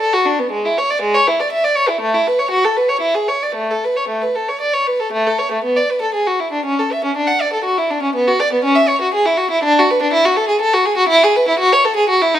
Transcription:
violin
0.00 A4
0.13 F#4
0.25 D4
0.39 B3
0.51 G#3
0.65 E4
0.78 C#5
0.90 D5
1.01 G#3
1.14 C#5
1.27 E4
1.40 D5
1.52 E5
1.64 D5
1.76 C#5
1.88 E4
2.01 A3
2.14 E4
2.27 B4
2.39 C#5
2.51 F#4
2.64 A4
2.77 B4
2.89 C#5
3.01 E4
3.14 G#4
3.28 C#5
3.43 D5
3.55 A3
3.71 A4
3.84 B4
3.96 C#5
4.08 A3
4.22 B4
4.35 A4
4.49 C#5
4.61 D5
4.74 C#5
4.87 B4
5.00 A4
5.12 A3
5.26 A4
5.38 C#5
5.52 A3
5.64 B3
5.76 D5
5.90 B4
6.02 A4
6.14 G#4
6.27 F#4
6.39 E4
6.52 D4
6.65 C#4
6.79 A4
6.92 E5
7.04 C#4
7.16 D4
7.27 F#5
7.41 D5
7.53 A4
7.64 F#4
7.78 E4
7.90 D4
8.02 C#4
8.15 B3
8.27 F#4
8.40 D5
8.53 B3
8.64 C#4
8.75 E5
8.88 C#5
9.01 F#4
9.14 G#4
9.26 E4
9.37 F#4
9.51 E4
9.63 D4
9.79 F#4
9.90 B4
10.02 D4
10.13 E4
10.25 F#4
10.36 A4
10.48 G#4
10.61 A4
10.73 F#4
10.85 G#4
10.97 F#4
11.08 E4
11.23 G#4
11.36 B4
11.48 E4
11.59 F#4
11.72 C#5
11.85 A4
11.96 G#4
12.09 F#4
12.22 E4
12.34 D#4

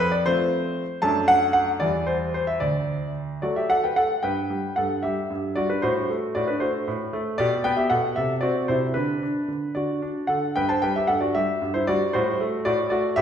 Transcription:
grand piano
Already playing: F2
0.00 B4
0.12 D5
0.26 F3 A3 C4 C5
1.02 F#2 A3 D4 A5
1.28 F#5
1.53 F#5
1.80 E2 E3 G3 E4 D5
2.07 C5
2.34 C5
2.47 E5
2.60 D2 D5
3.42 F#3 A3 F#4 A4 D5
3.56 G4 E5
3.70 A4 F#5
3.84 B4 G5
3.96 A4 F#5
4.23 G2 B4 G5
4.50 G3
4.76 G2 A4 F#5
5.03 G3 G4 E5
5.30 G2
5.56 G3 F#4 D5
5.70 D4 B4
5.82 A2 F#4 C5
6.10 A3
6.35 A2 F#4 D5
6.48 D4 B4
6.60 A3 F#4 C5
6.88 A2
7.13 A3
7.38 B2 G4 D5
7.64 B3 B4 G5
7.77 G4 E5
7.90 B2 A4 F#5
8.16 C3 A4 E5
8.41 C4 F#4 D5
8.68 C3 E4 C5
8.94 D3 D4 B4
9.23 D4
9.48 D3
9.75 D3 F#4 D5
10.02 D4
10.27 D3 A4 F#5
10.56 G2 B4 G5
10.69 C5 A5
10.82 G3 B4 G5
10.96 G4 E5
11.07 G2 A4 F#5
11.20 F#4 D5
11.35 G3 G4 E5
11.62 G2
11.74 E4 C5
11.87 G3 F#4 D5
12.13 A2 F#4 C5
12.41 A3
12.65 A2 F#4 D5
12.90 A3 F#4 D5
13.16 A2 G4 E5

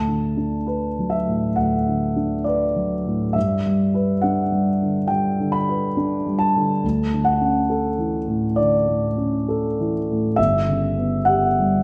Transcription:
grand piano
Already playing: D2 A5
0.07 D3
0.37 D4
0.67 B4
0.99 F#3
1.10 E5
1.27 A2
1.56 D2 F#5
1.88 D3
2.16 D4
2.44 B4 D5
2.76 F#3
3.06 A2
3.33 G2 E5
3.66 G3
3.94 B4
4.22 D4 F#5
4.52 G3
4.82 D3
5.08 G3 G5
5.40 D3
5.52 B5
5.69 B4
5.97 D4
6.26 G3
6.39 A5
6.56 D3
6.84 D2
7.13 D3
7.25 F#5
7.41 C#4
7.70 A4
7.98 E3
8.28 A2
8.56 D3 D5
8.88 A2
9.17 C#4
9.49 A4
9.80 E3
10.11 A2
10.36 G1 E5
10.68 C#3
10.97 B3
11.25 G4 F#5
11.59 G3

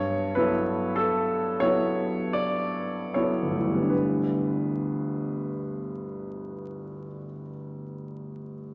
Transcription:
grand piano
Already playing: G2 C#5
0.35 F#3 B3 E4 A4 B4
0.96 A4
1.60 F#3 B3 E4 A4 C#5
2.33 D5
3.14 F#3 B3 E4 A4 C#5
3.42 G1
3.51 D2
3.59 E3
3.67 G3
3.75 B3
3.83 D4
3.90 B4

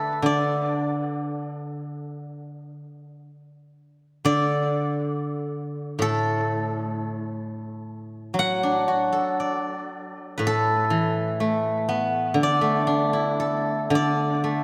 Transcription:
guzheng
Already playing: D3 A4 B4 D5 E5
0.22 D3 D5
4.25 D3 D5
5.99 A2 A4
8.34 F#3
8.39 F#5
8.63 D4
8.88 F#4
9.12 A4
9.39 D5 F5
9.63 E5
10.38 A2 B4
10.47 A4
10.90 E3
11.40 A3
11.89 B3
12.34 D3
12.43 D5
12.61 A3
12.87 D4
13.13 E4
13.40 A4
13.90 D3
13.95 D5
14.44 A3

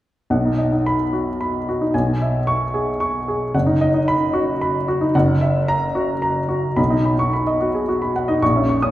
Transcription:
grand piano
0.30 B1 F#5
0.45 D#4
0.58 D#5
0.72 D#4
0.86 B5
1.13 F#4
1.41 B5
1.69 F#4
1.81 D#4
1.94 B1 G#5
2.22 E5
2.47 C#6
2.74 G#4
3.00 C#6
3.28 G#4
3.55 F#1 F#5
3.66 D#4
3.81 D#5
3.94 D#4
4.08 B5
4.33 F#4
4.61 B5
4.88 F#4
5.01 D#4
5.15 F#1 F#5
5.41 E5
5.68 A#5
5.95 F#4
6.22 A#5
6.49 F#4
6.76 B1 B5
6.90 D#4 D#5
7.05 B5
7.19 D#4 C#6
7.33 B5
7.47 D#5
7.61 F#4
7.74 G#4
7.89 F#4
8.02 B5
8.16 F#5
8.28 D#4 D#5
8.42 A#1 C#6
8.56 C#4 E5
8.69 C#6
8.82 C#4 D#6

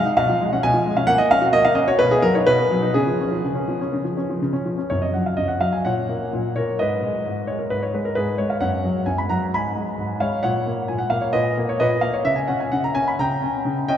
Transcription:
grand piano
0.05 D#4
0.17 B2 F5
0.29 F3
0.41 G#3
0.52 C#4 F#5
0.63 B2 G#5
0.74 F3
0.86 G#3
0.97 C#4 F5
1.07 A#3 F#5
1.18 A#3 D#5
1.31 C#4 F5
1.42 F#4
1.53 A#3 D#5
1.65 A#3 F5
1.75 C#4 D#5
1.87 F#4 C#5
1.99 B2 B4
2.11 B3 G#4
2.22 F#3 A#4
2.35 D#4 C#5
2.47 B2 B4
2.58 B3
2.71 F#3
2.82 D#4
2.94 C#3 G#4
3.07 F3
3.20 C#4
3.31 F3
3.44 C#3
3.55 C#4
3.68 F3
3.81 C#4
3.93 C#3
4.05 F3
4.17 C#4
4.29 F3
4.42 C#3
4.53 C#4
4.66 F3
4.78 C#4
4.90 F#2 C#5
5.02 D#5
5.13 F#3 F#5
5.26 F5
5.37 F#2 D#5
5.48 F#5
5.60 F#3 F5
5.72 G#5
5.85 A#2 C#5 F#5
6.09 A#3
6.33 A#2
6.56 A#3 A#4 C#5
6.79 G#2 B4 D#5
7.03 G#3
7.26 G#2
7.47 G#3 C#5
7.59 A#4
7.70 G#2 B4
7.83 C#5
7.94 G#3 B4
8.05 A#4
8.15 G#2 G#4 B4
8.38 G#3 C#5
8.50 F5
8.61 F#2 C#5 F#5
8.84 F#3
9.06 F#2 G#5
9.18 B5
9.30 F#3 F#5 A#5
9.54 G#2 G#5 B5
9.75 G#3
9.98 G#2
10.20 G#3 C#5 F5
10.43 A#2 C#5 F#5
10.66 A#3
10.88 A#2 G#5
10.98 F#5
11.10 A#3 F5
11.21 C#5
11.33 A#2 B4 D#5
11.57 A#3
11.69 C#5
11.80 A#2 B4 D#5
12.01 A#3 F5
12.14 C#5
12.25 C#3 E5
12.36 G#5
12.48 C#4 F#5
12.60 G#5
12.72 C#3 F#5
12.84 A#5
12.95 C#4 G#5
13.08 B5
13.19 C#3 G5 A#5
13.43 C#4
13.65 C#3
13.88 C#4 D#5 G5

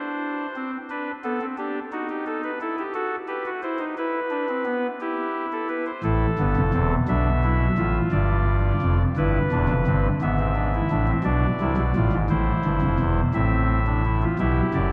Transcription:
pipe organ
Already playing: D4 C5
0.56 C4
0.90 D4 B4
1.24 B3 A4
1.41 C4
1.58 D4 G4
1.92 D#4 F#4
2.09 G4
2.26 A4
2.44 B4
2.61 E4 A4
2.79 G4
2.94 F#4 A4
3.27 G4 B4
3.46 F#4
3.63 E4 C5
3.79 D#4
3.97 E4 B4
4.30 D4
4.49 C4
4.65 B3
5.00 E4 G4
5.52 A4
5.69 B4
5.86 C5
6.03 A1 A2 E4 A4
6.39 G1 G2 B3
6.57 F1 F2
6.74 E1 E2 C4
7.08 B1 B2 D4 E5
7.44 E4
7.78 A1 A2 F4
8.12 G1 G2 D5
8.82 F1 F2
9.17 G1 G2 E4 B4
9.52 E1 E2 D4
9.69 F1 F2
9.87 G1 G2 C4
10.21 G#1 G#2 B3 E5
10.39 C4
10.56 D4
10.75 E4
10.91 A1 A2 D4
11.08 C4
11.24 B1 B2 D4 D5
11.61 C2 C3 E4
11.77 B1 B2
11.96 A1 A2 F4
12.12 G#1 G#2
12.30 A1 A2 E4 C5
12.65 G1 G2
12.82 F1 F2
13.00 E1 E2
13.34 A1 A2 C4 E5
13.87 D4
14.05 E4
14.22 F4
14.39 B1 B2 E4 G4 E5
14.74 F#1 F#2 D5

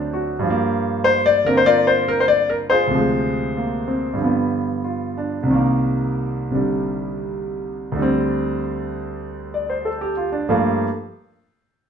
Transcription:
grand piano
Already playing: D2 D3 F#3 C4 D4
0.13 F#4
0.39 G2 F3
0.50 A#3
1.04 C5
1.26 D5
1.45 D3 A#3 C4 A#4
1.57 C5
1.66 F4 A#4 D5
1.87 C5
2.08 A#4
2.20 C5
2.28 D5
2.50 A#4
2.70 F4 G#4 C5
2.87 D2 C3
2.94 F3 G#3
3.57 A#3
3.88 C4
4.14 G2 D3
4.21 F3 B3
4.84 F4
5.18 D4
5.43 C2 C3
5.50 D#3 A#3
6.51 C3 D3 G3
7.92 D2 D3
7.99 G3 C4
9.54 D5
9.70 C5
9.85 A4
10.01 G4
10.17 F4
10.32 D4
10.49 G2 F3 A3 A#3

